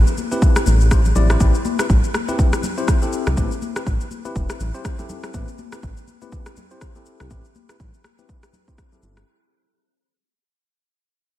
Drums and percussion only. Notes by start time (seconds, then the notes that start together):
0.07 cabasa
0.18 high conga, cabasa
0.32 muted conga, cabasa
0.42 kick, cabasa
0.56 cross-stick, cabasa
0.66 muted conga, high conga, low conga, cabasa
0.81 cabasa
0.91 kick, cross-stick, cabasa
1.05 muted conga, low conga, cabasa
1.15 low conga, cabasa
1.30 cross-stick, cabasa
1.40 kick, muted conga, high conga, cabasa
1.55 cabasa
1.65 high conga, cabasa
1.79 cross-stick, muted conga, cabasa
1.90 kick, low conga, cabasa
2.04 cabasa
2.14 cross-stick, high conga, cabasa
2.29 muted conga, high conga, cabasa
2.39 kick, low conga, cabasa
2.53 cross-stick, cabasa
2.63 muted conga, high conga, low conga, cabasa
2.78 cabasa
2.88 kick, cross-stick, cabasa
3.02 muted conga, cabasa
3.13 cabasa
3.27 cross-stick, low conga, cabasa
3.37 kick, muted conga, high conga, cabasa
3.51 cabasa
3.62 high conga, cabasa
3.76 cross-stick, muted conga, cabasa
3.86 kick, low conga, cabasa
4.01 cabasa
4.11 high conga, cabasa
4.25 muted conga, cabasa
4.36 kick, cabasa
4.50 cross-stick, cabasa
4.60 muted conga, high conga, low conga, cabasa
4.74 cabasa
4.85 kick, cross-stick, cabasa
4.99 muted conga, low conga, cabasa
5.09 low conga, cabasa
5.24 cross-stick, cabasa
5.34 kick, muted conga, high conga, cabasa
5.48 cabasa
5.58 high conga, cabasa
5.72 cross-stick, muted conga, cabasa
5.83 kick, low conga, cabasa
5.97 cabasa
6.07 high conga, cabasa
6.22 muted conga, high conga, cabasa
6.32 kick, low conga, cabasa
6.46 cross-stick, cabasa
6.57 muted conga, high conga, low conga, cabasa
6.71 cabasa
6.81 kick, cross-stick, cabasa
6.95 muted conga, cabasa
7.06 cabasa
7.20 cross-stick, low conga, cabasa
7.30 kick, muted conga, high conga, cabasa
7.45 cabasa
7.55 high conga, cabasa
7.69 cross-stick, muted conga, cabasa
7.80 kick, low conga, cabasa
7.94 cabasa
8.04 cross-stick, high conga, cabasa
8.19 muted conga, cabasa
8.29 kick, cabasa
8.43 cross-stick, cabasa
8.53 muted conga, high conga, low conga, cabasa
8.68 kick, cabasa
8.78 kick, cross-stick, cabasa
8.92 muted conga, low conga, cabasa
9.03 low conga, cabasa
9.17 cross-stick, cabasa